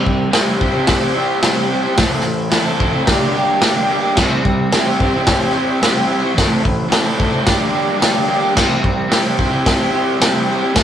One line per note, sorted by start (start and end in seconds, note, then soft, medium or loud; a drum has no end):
0.00 0.30 C3 loud
0.00 0.31 G3 medium
0.00 0.29 G4 medium
0.00 0.29 C5 medium
0.00 0.29 E5 medium
0.00 muted overdriven electric guitar stroke soft
0.06 kick medium
0.32 0.74 C3 loud
0.32 0.75 G3 loud
0.32 0.49 C4 loud
0.32 0.48 E4 loud
0.32 0.46 G4 loud
0.32 snare loud
0.32 open hi-hat medium
0.36 0.84 G4 medium
0.36 0.84 C5 medium
0.36 0.44 C5 loud
0.36 0.85 E5 loud
0.46 0.59 E4 medium
0.46 0.60 G4 medium
0.46 0.62 C5 medium
0.50 0.57 C4 medium
0.59 0.76 C4 medium
0.59 0.76 E4 medium
0.59 0.74 G4 medium
0.59 kick medium
0.63 0.72 C5 medium
0.73 1.02 E4 medium
0.73 1.00 G4 medium
0.73 0.98 C5 medium
0.78 1.03 C4 medium
0.87 1.38 G4 medium
0.87 1.38 C5 medium
0.87 1.39 D5 loud
0.87 kick loud
0.87 snare loud
0.87 open hi-hat medium
1.00 1.14 E4 medium
1.00 1.16 G4 medium
1.00 1.17 C5 medium
1.04 1.12 C4 medium
1.14 1.42 C4 medium
1.14 1.43 E4 medium
1.14 1.44 G4 medium
1.18 1.44 C5 loud
1.42 1.84 C3 loud
1.42 1.84 G3 loud
1.42 1.58 C4 loud
1.42 1.57 E4 loud
1.42 1.93 G4 medium
1.42 1.55 G4 loud
1.42 1.93 C5 medium
1.42 1.53 C5 loud
1.42 1.93 E5 loud
1.42 snare loud
1.42 open hi-hat medium
1.54 1.70 E4 medium
1.54 1.71 G4 medium
1.54 1.72 C5 medium
1.59 1.67 C4 medium
1.68 1.85 C4 medium
1.68 1.83 E4 medium
1.68 1.82 G4 medium
1.73 1.81 C5 medium
1.82 1.97 E4 medium
1.82 1.96 G4 medium
1.82 1.96 C5 medium
1.86 1.97 C4 medium
1.95 2.49 A2 loud
1.95 2.50 E3 loud
1.95 2.22 A3 loud
1.95 2.23 C4 loud
1.95 2.23 E4 loud
1.95 kick loud
1.95 snare loud
1.95 open hi-hat medium
1.99 2.23 A4 loud
1.99 2.49 A4 medium
1.99 2.49 C5 medium
1.99 2.49 E5 loud
2.23 muted overdriven electric guitar stroke soft
2.50 2.93 A2 medium
2.50 2.94 E3 loud
2.50 2.67 A3 loud
2.50 2.66 C4 loud
2.50 3.03 A4 medium
2.50 snare loud
2.50 open hi-hat medium
2.54 2.65 E4 loud
2.54 2.63 A4 loud
2.54 3.03 C5 medium
2.54 3.03 E5 loud
2.64 2.77 C4 medium
2.64 2.79 E4 medium
2.64 2.81 A4 medium
2.68 2.76 A3 medium
2.77 2.94 A3 medium
2.77 2.93 C4 medium
2.77 2.92 E4 medium
2.77 kick medium
2.82 2.90 A4 medium
2.91 3.06 C4 medium
2.91 3.06 E4 medium
2.91 3.05 A4 medium
2.95 3.07 A3 medium
3.05 3.48 G2 medium
3.05 3.48 D3 loud
3.05 3.22 G3 loud
3.05 3.20 A#3 loud
3.05 3.19 D4 loud
3.05 3.57 G4 medium
3.05 3.56 A#4 medium
3.05 3.57 D5 loud
3.05 kick loud
3.05 snare loud
3.05 open hi-hat medium
3.10 3.17 G4 loud
3.18 3.33 A#3 medium
3.18 3.34 D4 medium
3.18 3.35 G4 medium
3.23 3.31 G3 medium
3.32 3.59 G3 medium
3.32 3.60 A#3 medium
3.32 3.61 D4 medium
3.37 3.62 G4 medium
3.37 3.51 A#5 medium
3.51 3.63 A5 medium
3.58 4.02 G2 loud
3.58 4.03 D3 medium
3.58 3.77 G3 medium
3.58 3.75 A#3 medium
3.58 snare loud
3.58 open hi-hat medium
3.62 3.74 D4 loud
3.62 3.72 G4 loud
3.62 4.13 G4 medium
3.62 4.13 A#4 medium
3.62 4.13 D5 loud
3.62 4.15 G5 medium
3.74 3.87 A#3 medium
3.74 3.89 D4 medium
3.74 3.91 G4 medium
3.79 3.86 G3 medium
3.87 4.04 G3 medium
3.87 4.03 A#3 medium
3.87 4.01 D4 medium
3.92 3.99 G4 medium
4.01 4.16 A#3 medium
4.01 4.15 D4 medium
4.01 4.14 G4 medium
4.05 4.15 G3 medium
4.15 4.70 C3 medium
4.15 4.71 G3 loud
4.15 4.42 C4 medium
4.15 4.43 E4 loud
4.15 4.42 G4 loud
4.15 kick loud
4.15 snare loud
4.15 crash loud
4.19 4.68 G4 medium
4.19 4.43 C5 loud
4.19 4.69 C5 medium
4.19 4.68 E5 loud
4.43 muted overdriven electric guitar stroke soft
4.43 kick medium
4.71 5.13 C3 medium
4.71 5.14 G3 loud
4.71 4.88 C4 loud
4.71 4.86 E4 loud
4.71 5.22 G4 medium
4.71 4.85 G4 loud
4.71 5.23 C5 medium
4.71 5.22 E5 loud
4.71 snare loud
4.71 open hi-hat medium
4.76 4.83 C5 loud
4.84 4.98 E4 medium
4.84 5.00 G4 medium
4.84 5.01 C5 medium
4.89 4.97 C4 medium
4.98 5.16 C4 medium
4.98 5.14 E4 medium
4.98 5.13 G4 medium
4.98 kick medium
5.02 5.11 C5 medium
5.13 5.41 E4 medium
5.13 5.40 G4 medium
5.13 5.38 C5 medium
5.17 5.42 C4 medium
5.27 5.77 G4 medium
5.27 5.78 C5 medium
5.27 5.78 G5 medium
5.27 kick loud
5.27 snare loud
5.27 open hi-hat medium
5.39 5.53 E4 medium
5.39 5.54 G4 medium
5.39 5.56 C5 medium
5.43 5.51 C4 medium
5.52 5.81 C4 medium
5.52 5.82 E4 medium
5.52 5.83 G4 medium
5.57 5.84 C5 medium
5.80 6.22 C3 medium
5.80 6.23 G3 loud
5.80 5.96 C4 loud
5.80 5.95 E4 medium
5.80 6.32 G4 medium
5.80 6.33 C5 medium
5.80 snare loud
5.80 open hi-hat medium
5.84 5.93 G4 loud
5.84 5.91 C5 loud
5.84 6.33 E5 medium
5.93 6.06 E4 medium
5.93 6.08 G4 medium
5.93 6.10 C5 medium
5.98 6.05 C4 medium
6.06 6.23 C4 medium
6.06 6.22 E4 medium
6.06 6.21 G4 medium
6.11 6.19 C5 medium
6.20 6.36 E4 medium
6.20 6.35 G4 medium
6.20 6.34 C5 medium
6.25 6.35 C4 medium
6.33 6.88 A2 loud
6.33 6.88 E3 medium
6.33 6.62 A3 loud
6.33 6.62 C4 loud
6.33 6.86 A4 medium
6.33 6.86 E5 medium
6.38 6.62 E4 loud
6.38 6.63 A4 loud
6.38 6.87 C5 medium
6.38 kick loud
6.38 snare loud
6.38 open hi-hat medium
6.63 muted overdriven electric guitar stroke soft
6.63 kick medium
6.89 7.31 A2 medium
6.89 7.32 E3 loud
6.89 7.06 A3 loud
6.89 7.04 C4 loud
6.89 7.03 E4 loud
6.89 7.01 A4 loud
6.89 snare loud
6.89 open hi-hat medium
6.94 7.42 A4 medium
6.94 7.42 C5 medium
6.94 7.43 D5 loud
7.02 7.15 C4 medium
7.02 7.17 E4 medium
7.02 7.18 A4 medium
7.07 7.14 A3 medium
7.15 7.33 A3 medium
7.15 7.32 C4 medium
7.15 7.30 E4 medium
7.20 7.29 A4 medium
7.20 kick medium
7.30 7.45 C4 medium
7.30 7.44 E4 medium
7.30 7.44 A4 medium
7.34 7.45 A3 medium
7.43 7.86 G2 loud
7.43 7.87 D3 loud
7.43 7.61 G3 medium
7.43 7.59 A#3 loud
7.43 snare loud
7.47 7.58 D4 loud
7.47 7.57 G4 loud
7.47 7.97 G4 loud
7.47 7.97 A#4 medium
7.47 7.97 D5 loud
7.47 kick loud
7.47 open hi-hat medium
7.58 7.71 A#3 medium
7.58 7.73 D4 medium
7.58 7.74 G4 medium
7.62 7.69 G3 medium
7.70 7.97 G3 medium
7.70 7.98 A#3 medium
7.70 7.99 D4 medium
7.75 8.00 G4 medium
7.97 8.40 G2 loud
7.97 8.41 D3 medium
7.97 8.15 G3 loud
7.97 8.14 A#3 medium
8.01 8.12 D4 loud
8.01 8.11 G4 loud
8.01 8.52 A#4 medium
8.01 8.52 D5 medium
8.01 snare loud
8.01 open hi-hat medium
8.05 8.53 G4 medium
8.12 8.26 A#3 medium
8.12 8.27 D4 medium
8.12 8.29 G4 medium
8.16 8.25 G3 medium
8.26 8.43 G3 medium
8.26 8.42 A#3 medium
8.26 8.40 D4 medium
8.26 8.38 G4 loud
8.40 8.55 A#3 medium
8.40 8.54 D4 medium
8.40 8.53 G4 medium
8.44 8.54 G3 medium
8.53 9.07 C3 loud
8.53 9.08 G3 loud
8.53 8.82 C4 loud
8.53 8.81 E4 loud
8.53 8.82 G4 loud
8.53 kick loud
8.53 snare loud
8.53 crash loud
8.58 9.07 G4 medium
8.58 8.82 C5 loud
8.58 9.08 C5 medium
8.58 9.08 E5 loud
8.83 muted overdriven electric guitar stroke soft
8.83 kick medium
9.08 9.51 C3 loud
9.08 9.51 G3 loud
9.08 9.26 C4 loud
9.08 9.25 E4 loud
9.08 9.24 G4 loud
9.08 snare loud
9.08 open hi-hat medium
9.13 9.61 G4 medium
9.13 9.22 C5 loud
9.13 9.61 C5 medium
9.13 9.61 G5 loud
9.23 9.38 E4 medium
9.23 9.39 G4 medium
9.23 9.41 C5 medium
9.27 9.36 C4 medium
9.37 9.53 C4 medium
9.37 9.53 E4 medium
9.37 9.51 G4 medium
9.37 kick medium
9.42 9.49 C5 medium
9.51 9.81 C4 medium
9.51 9.80 E4 medium
9.51 9.78 G4 medium
9.51 9.76 C5 medium
9.66 10.16 G4 loud
9.66 10.15 C5 medium
9.66 10.16 E5 loud
9.66 kick loud
9.66 snare loud
9.66 open hi-hat medium
9.78 9.92 E4 medium
9.78 9.93 G4 medium
9.78 9.95 C5 medium
9.82 9.90 C4 medium
9.91 10.20 C4 medium
9.91 10.21 E4 medium
9.91 10.21 G4 medium
9.96 10.22 C5 medium
10.17 10.61 C3 medium
10.17 10.61 G3 medium
10.17 10.36 C4 loud
10.17 10.69 G4 medium
10.17 10.68 C5 medium
10.17 10.69 G5 medium
10.22 10.34 E4 loud
10.22 10.33 G4 loud
10.22 10.31 C5 loud
10.22 snare loud
10.22 open hi-hat medium
10.32 10.47 E4 medium
10.32 10.49 G4 medium
10.32 10.50 C5 medium
10.37 10.46 C4 medium
10.47 10.62 C4 medium
10.47 10.61 E4 medium
10.47 10.60 G4 medium
10.51 10.58 C5 medium
10.59 10.74 E4 medium
10.59 10.74 G4 medium
10.59 10.72 C5 medium
10.64 10.74 C4 medium
10.72 10.83 A2 loud
10.72 10.83 E3 loud
10.72 10.83 A3 loud
10.72 10.83 C4 loud
10.72 10.83 E4 loud
10.72 10.83 A4 medium
10.72 10.83 C5 medium
10.72 10.83 E5 loud
10.72 kick loud
10.72 snare loud
10.72 open hi-hat medium
10.77 10.83 A4 loud